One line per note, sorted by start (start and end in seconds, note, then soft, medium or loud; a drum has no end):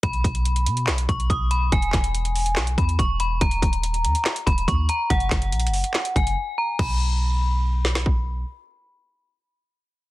0.03 0.23 B1 loud
0.03 1.05 B5 loud
0.03 kick loud
0.03 closed hi-hat medium
0.13 closed hi-hat medium
0.24 0.68 B1 loud
0.24 kick loud
0.24 closed hi-hat medium
0.35 closed hi-hat medium
0.45 closed hi-hat medium
0.56 closed hi-hat soft
0.66 0.89 B2 loud
0.66 closed hi-hat medium
0.77 closed hi-hat medium
0.87 1.08 B1 loud
0.87 snare loud
0.87 clap medium
0.87 closed hi-hat medium
0.98 closed hi-hat medium
1.09 1.29 B1 loud
1.09 1.26 C#6 medium
1.09 kick loud
1.09 closed hi-hat medium
1.20 closed hi-hat medium
1.30 1.70 B1 loud
1.30 1.47 D#6 medium
1.30 kick medium
1.30 closed hi-hat medium
1.51 1.68 B5 medium
1.51 closed hi-hat medium
1.72 1.92 E1 loud
1.72 2.74 G#5 loud
1.72 kick loud
1.72 closed hi-hat medium
1.82 closed hi-hat soft
1.93 2.58 E1 loud
1.93 kick loud
1.93 snare medium
1.93 clap medium
1.93 closed hi-hat medium
2.04 closed hi-hat medium
2.15 closed hi-hat medium
2.25 closed hi-hat soft
2.36 open hi-hat medium
2.46 closed hi-hat medium
2.56 2.77 B1 loud
2.56 snare loud
2.56 clap medium
2.56 closed hi-hat medium
2.67 closed hi-hat medium
2.78 2.98 E2 loud
2.78 2.95 B5 medium
2.78 kick loud
2.78 closed hi-hat medium
2.89 closed hi-hat medium
2.99 3.39 E1 loud
2.99 3.16 C#6 medium
2.99 kick medium
2.99 closed hi-hat medium
3.20 3.37 B5 medium
3.20 closed hi-hat medium
3.41 3.61 D#1 loud
3.41 4.43 A#5 loud
3.41 kick loud
3.41 closed hi-hat medium
3.51 closed hi-hat medium
3.62 4.06 D#1 loud
3.62 kick medium
3.62 closed hi-hat medium
3.73 closed hi-hat medium
3.83 closed hi-hat medium
3.94 closed hi-hat soft
4.05 4.15 D#2 loud
4.05 closed hi-hat medium
4.15 closed hi-hat medium
4.25 snare loud
4.25 clap medium
4.25 closed hi-hat medium
4.36 closed hi-hat medium
4.46 4.67 D#1 loud
4.46 4.64 B5 medium
4.46 kick loud
4.46 closed hi-hat medium
4.58 closed hi-hat medium
4.68 4.88 D#2 loud
4.68 4.85 C#6 medium
4.68 kick medium
4.68 closed hi-hat medium
4.89 5.06 A#5 medium
4.89 closed hi-hat medium
5.10 5.30 F#1 loud
5.10 6.12 F#5 loud
5.10 kick loud
5.10 closed hi-hat medium
5.20 closed hi-hat soft
5.31 5.54 F#1 loud
5.31 kick loud
5.31 snare medium
5.31 clap medium
5.31 closed hi-hat medium
5.42 closed hi-hat medium
5.52 5.70 A#1 loud
5.52 closed hi-hat medium
5.59 closed hi-hat medium
5.67 5.83 F#1 loud
5.67 closed hi-hat medium
5.74 open hi-hat medium
5.84 closed hi-hat medium
5.94 snare loud
5.94 clap medium
5.94 closed hi-hat medium
6.05 closed hi-hat medium
6.16 6.36 F#1 loud
6.16 6.56 G#5 medium
6.16 kick loud
6.16 closed hi-hat medium
6.27 closed hi-hat medium
6.58 6.75 A#5 medium
6.79 8.44 B1 loud
6.79 8.02 B5 medium
6.79 kick loud
6.79 crash medium
7.85 snare medium
7.95 snare medium
8.06 kick medium